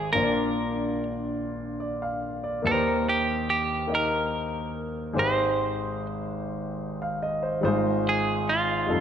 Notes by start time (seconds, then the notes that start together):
Already playing: G#3 D#4 G4 G#4 D5
0.12 A#1 A#2 A#3 D4 F4 A#4 C5
0.23 D5
1.80 D5
2.02 F5
2.44 D5
2.62 D#2 D#3 A#3 D#4 G4
2.67 A#4 B4
2.73 C5
3.09 G4
3.50 G4
3.87 A#3 D#4 G4
3.92 A#4 D#5
5.13 G#1 G#2 G#3 D#4 G4 C5
5.19 C5
7.02 F5
7.22 D#5
7.43 C5
7.61 G#1 G#2 G3 D#4 F4 C5
7.68 G#3
8.09 G#4
8.49 F4
8.87 F1 F2 G3 D#4 F4 A4